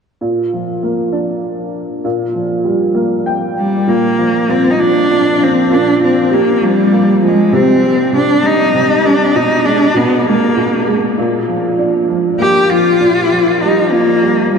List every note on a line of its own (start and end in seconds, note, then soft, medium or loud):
0.21 2.00 A#2 soft
0.53 1.71 F3 soft
0.83 2.01 A#3 soft
1.12 2.01 D4 soft
2.04 3.83 A#2 medium
2.35 3.53 F3 soft
2.64 3.83 G3 soft
2.95 3.84 A#3 soft
3.26 3.83 G5 medium
3.59 3.90 G3 medium
3.87 4.47 A#2 medium
3.87 4.52 A#3 medium
4.18 4.78 F3 soft
4.48 5.08 A#2 soft
4.48 4.72 C4 medium
4.71 4.82 D#4 medium
4.79 5.39 F3 soft
4.79 5.45 D4 medium
5.10 5.68 A#2 soft
5.40 5.69 F3 soft
5.40 5.75 C4 medium
5.70 7.49 A#2 medium
5.70 6.02 D4 medium
6.01 6.60 F3 soft
6.01 6.35 C4 medium
6.31 6.65 A#3 medium
6.31 7.49 G4 soft
6.61 7.20 F3 soft
6.61 7.23 G3 medium
6.92 7.51 A#3 soft
7.22 7.51 F3 soft
7.22 7.57 G#3 medium
7.52 8.11 C3 medium
7.52 8.15 C4 medium
7.82 8.42 G3 soft
8.12 8.72 C3 soft
8.12 8.47 D4 medium
8.43 9.03 G3 soft
8.43 9.07 D#4 medium
8.74 9.33 C3 soft
9.04 9.34 G3 soft
9.04 9.38 D4 medium
9.35 9.93 B2 medium
9.35 9.67 D#4 medium
9.65 10.24 G#3 soft
9.65 9.98 D4 medium
9.94 10.55 B2 soft
9.94 10.20 B3 medium
10.20 10.28 B3 medium
10.26 10.85 G#3 soft
10.26 10.95 A#3 medium
10.56 11.16 B2 soft
10.87 11.16 G#3 soft
11.18 12.96 A#2 medium
11.48 12.07 F3 soft
11.78 12.96 D4 soft
12.09 12.70 F3 soft
12.39 12.98 A#3 soft
12.39 12.71 G4 medium
12.70 13.00 F3 soft
12.70 13.63 F4 medium
13.00 14.59 A#2 medium
13.32 13.90 F3 soft
13.62 14.20 G3 soft
13.62 13.93 D#4 medium
13.92 14.50 F3 soft
13.92 14.53 A#3 medium
14.22 14.59 G3 soft
14.52 14.59 F3 soft
14.52 14.59 G3 medium